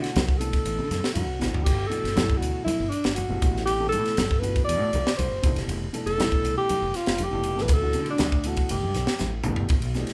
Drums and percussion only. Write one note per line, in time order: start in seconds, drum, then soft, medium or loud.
0.04 snare soft
0.04 ride medium
0.16 snare loud
0.16 hi-hat pedal medium
0.16 ride medium
0.16 high conga loud
0.29 kick medium
0.41 hi-hat pedal medium
0.41 ride medium
0.53 kick medium
0.53 ride medium
0.65 hi-hat pedal medium
0.65 ride medium
0.65 muted conga soft
0.91 snare soft
0.91 hi-hat pedal medium
0.91 ride medium
0.91 high conga medium
1.04 snare medium
1.15 hi-hat pedal medium
1.15 ride medium
1.15 high conga medium
1.41 snare medium
1.41 hi-hat pedal medium
1.41 muted conga soft
1.41 low conga medium
1.54 floor tom medium
1.66 kick loud
1.66 hi-hat pedal medium
1.66 ride medium
1.66 crash medium
1.66 muted conga soft
1.91 hi-hat pedal medium
1.91 ride medium
1.91 muted conga soft
2.05 snare soft
2.05 ride medium
2.17 snare loud
2.17 hi-hat pedal medium
2.17 ride medium
2.17 high conga loud
2.30 kick medium
2.42 hi-hat pedal medium
2.42 ride medium
2.66 hi-hat pedal medium
2.66 ride medium
2.66 muted conga soft
2.66 high conga medium
2.92 hi-hat pedal medium
2.92 ride medium
3.04 snare medium
3.04 ride medium
3.16 hi-hat pedal medium
3.16 ride medium
3.16 high conga medium
3.42 kick loud
3.42 hi-hat pedal medium
3.42 ride medium
3.42 muted conga soft
3.56 snare soft
3.67 hi-hat pedal medium
3.67 ride medium
3.67 muted conga soft
3.92 hi-hat pedal medium
3.92 ride medium
4.06 snare soft
4.06 ride medium
4.17 snare loud
4.17 hi-hat pedal medium
4.17 ride medium
4.17 high conga medium
4.31 kick medium
4.43 hi-hat pedal medium
4.43 ride medium
4.56 kick medium
4.56 ride medium
4.69 hi-hat pedal medium
4.69 ride medium
4.69 muted conga soft
4.93 hi-hat pedal medium
4.93 ride medium
4.93 high conga medium
5.07 snare loud
5.19 hi-hat pedal medium
5.19 ride medium
5.19 high conga medium
5.43 kick loud
5.43 hi-hat pedal medium
5.43 ride medium
5.43 muted conga soft
5.43 low conga medium
5.56 snare soft
5.56 ride medium
5.69 hi-hat pedal medium
5.69 ride medium
5.69 muted conga soft
5.94 hi-hat pedal medium
5.94 ride medium
5.94 muted conga soft
6.07 ride medium
6.20 snare loud
6.20 hi-hat pedal medium
6.20 ride medium
6.20 high conga loud
6.32 kick medium
6.45 hi-hat pedal medium
6.45 ride medium
6.69 hi-hat pedal loud
6.69 ride medium
6.69 muted conga soft
6.69 high conga medium
6.94 snare soft
6.94 hi-hat pedal medium
6.94 ride medium
7.06 snare loud
7.06 ride medium
7.18 hi-hat pedal medium
7.18 ride medium
7.18 high conga medium
7.43 hi-hat pedal medium
7.43 ride medium
7.43 muted conga soft
7.58 snare soft
7.68 kick loud
7.68 hi-hat pedal medium
7.68 ride medium
7.68 muted conga soft
7.93 hi-hat pedal medium
7.93 ride medium
7.93 muted conga soft
8.06 ride medium
8.18 snare medium
8.18 hi-hat pedal medium
8.18 ride medium
8.18 high conga loud
8.32 kick medium
8.44 hi-hat pedal medium
8.44 ride medium
8.57 kick medium
8.57 ride medium
8.69 hi-hat pedal medium
8.69 ride medium
8.69 muted conga soft
8.69 low conga medium
8.94 snare soft
8.94 hi-hat pedal medium
8.94 ride medium
8.94 high conga medium
9.07 snare loud
9.18 snare medium
9.18 hi-hat pedal medium
9.18 high conga medium
9.44 hi-hat pedal medium
9.44 mid tom medium
9.44 muted conga soft
9.44 low conga medium
9.56 floor tom medium
9.69 kick loud
9.69 ride medium
9.69 muted conga soft
9.82 ride medium
9.94 snare soft
9.94 hi-hat pedal medium
10.07 snare soft
10.07 ride medium